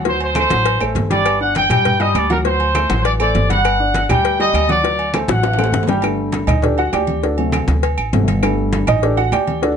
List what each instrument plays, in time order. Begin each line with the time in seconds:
Already playing: upright bass D2
0.05 grand piano F#3 F#4 F#5, trumpet section C5, cowbell, high conga
0.20 trumpet section C5, high conga, low agogo
0.35 grand piano A3 A4 C5, trumpet section C5, cowbell, high conga, low timbale, low agogo, claves
0.50 upright bass A1, grand piano F#3 F#4 F#5, cowbell, high conga
0.65 cowbell, high conga, low agogo
0.80 upright bass A1, grand piano A3 A4 C5, high conga, low agogo, claves
0.95 upright bass G1, cowbell, high conga, low timbale
1.10 grand piano G3 G4 G5, trumpet section D5, cowbell, high conga, low agogo
1.25 cowbell, high conga, low agogo, claves
1.40 grand piano D4 D5, trumpet section F#5, high conga
1.55 trumpet section G5, cowbell, high conga, low timbale, low agogo
1.70 upright bass G2, grand piano G3 G4 G5, trumpet section G5, cowbell, high conga, low conga, low agogo, claves
1.85 cowbell, high conga, low conga
2.00 grand piano G3 G4 G5, trumpet section D#5, high conga, low agogo
2.15 upright bass D2, trumpet section D5, cowbell, high conga, low timbale, low agogo, claves
2.30 grand piano F#3 F#4 F#5, trumpet section A#4, high conga, low agogo
2.45 grand piano F#3 F#4 F#5, trumpet section C5, cowbell, high conga
2.60 high conga, low agogo
2.75 grand piano A3 A4 C5, cowbell, high conga, low timbale, low agogo, claves
2.90 upright bass A1, grand piano F#3 F#4 F#5, cowbell, high conga
3.05 trumpet section D5, cowbell, high conga, low agogo
3.20 grand piano A3 A4 C5, trumpet section D5, high conga, low agogo, claves
3.35 upright bass G1, cowbell, high conga, low timbale
3.49 grand piano G3 G4 F#5, trumpet section F#5, cowbell, high conga, low agogo
3.65 cowbell, high conga, low agogo, claves
3.80 grand piano D4 D5, high conga
3.94 cowbell, high conga, low timbale, low agogo
4.09 upright bass D2, grand piano G3 G4 G5, trumpet section G5, cowbell, high conga, low conga, low agogo, claves
4.25 cowbell
4.39 grand piano G3 G4 G5, trumpet section D#5, high conga, low agogo
4.54 upright bass D2, cowbell, high conga, low timbale, low agogo, claves
4.69 grand piano F#3 F#4 F#5, trumpet section D5, high conga, low agogo
4.84 grand piano F#3 F#4 F#5, cowbell
4.99 high conga, low agogo
5.14 grand piano A3 A4 C5, cowbell, high conga, low timbale, low agogo, claves
5.28 upright bass A1, grand piano F#3 F#4 F#5, trumpet section F#5, cowbell, high bongo, high conga
5.43 cowbell, high bongo, high conga, high timbale, low agogo
5.53 high timbale
5.58 grand piano A3 A4 C5, low bongo, high conga, low agogo, claves
5.64 low timbale
5.72 upright bass G1, cowbell, low bongo, high conga
5.83 low timbale
5.87 grand piano G3 G4 G5, cowbell, low bongo, high conga, low agogo
5.93 low timbale
6.02 grand piano D3 G3 A3, cowbell, high conga, low agogo, claves
6.18 high conga
6.32 cowbell, high conga, low timbale, low agogo
6.47 upright bass D2, grand piano D#4 D#5, cowbell, high conga, low conga, low agogo, claves
6.62 grand piano D4 G4 A4 D5, cowbell, high conga, low conga
6.77 grand piano F#4 F#5, high conga, low agogo
6.93 upright bass D2, grand piano G4 D5 G5, cowbell, high conga, low timbale, low agogo, claves
7.07 high conga, low agogo
7.23 grand piano D4 F#4 A4 D5, cowbell, high conga
7.38 grand piano C3 F#3 A3, high conga, low agogo
7.52 cowbell, high conga, low timbale, low agogo, claves
7.68 upright bass D2, cowbell, high conga
7.83 cowbell, high conga, low agogo
7.98 upright bass A1, high conga, low agogo, claves
8.13 upright bass G1, grand piano C3 F#3 A3, cowbell, high conga, low timbale
8.28 cowbell, high conga, low agogo
8.43 grand piano D3 G3 A3, cowbell, low agogo, claves
8.58 high conga
8.73 cowbell, high conga, low timbale, low agogo
8.87 upright bass A1, grand piano D#4 D#5, cowbell, high conga, low conga, low agogo, claves
9.02 grand piano D4 G4 A4 D5, cowbell, high conga
9.17 grand piano F#4 F#5, high conga, low agogo
9.32 upright bass D2, grand piano G4 D5 G5, cowbell, high conga, low timbale, low agogo, claves
9.47 high conga, low agogo
9.62 grand piano D4 F#4 A4 D5, cowbell, high conga